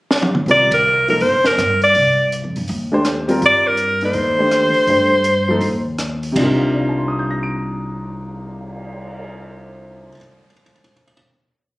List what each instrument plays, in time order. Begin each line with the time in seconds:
0.11 snare
0.23 high tom
0.35 mid tom
0.46 upright bass C2, grand piano G3 C4 F4 A#4, open hi-hat
0.51 alto saxophone D5
0.71 alto saxophone A#4, kick, ride
1.08 grand piano F3 A#3 D#4 A4, alto saxophone A#4, open hi-hat
1.20 upright bass G1, alto saxophone C5, open hi-hat
1.44 alto saxophone A#4, snare
1.58 upright bass G2, cross-stick, closed hi-hat
1.82 alto saxophone D5, open hi-hat
1.95 upright bass C2, open hi-hat
2.32 closed hi-hat
2.44 upright bass F2
2.56 upright bass G2, open hi-hat
2.68 upright bass D#2, open hi-hat
2.92 grand piano A3 D4 G4 C5
3.05 cross-stick, closed hi-hat
3.28 grand piano G3 C4 F4 A#4, open hi-hat
3.42 upright bass G2, open hi-hat
3.46 alto saxophone D5
3.67 alto saxophone A#4
3.77 closed hi-hat
4.01 grand piano A#3 D#4 A4 D5, open hi-hat
4.05 alto saxophone C5
4.13 upright bass D#2, open hi-hat
4.38 grand piano A3 D4 G4 C5
4.51 cross-stick, closed hi-hat
4.74 muted upright bass stroke, open hi-hat
4.87 upright bass G2, grand piano A3 D4 G4 C5, open hi-hat
5.24 closed hi-hat
5.48 grand piano F3 A#3 D#4 A4
5.61 upright bass D#2, open hi-hat
5.98 cross-stick, closed hi-hat
6.23 open hi-hat
6.32 upright bass C2, grand piano C3 G3, kick, crash
6.36 grand piano D4 D#4
6.41 grand piano F4 A#4
6.60 cymbal swell
6.74 grand piano D5
6.80 grand piano F5
6.89 grand piano A5
6.98 grand piano C6
7.08 grand piano D#6
7.19 grand piano G6
7.31 grand piano A#6
7.43 grand piano D7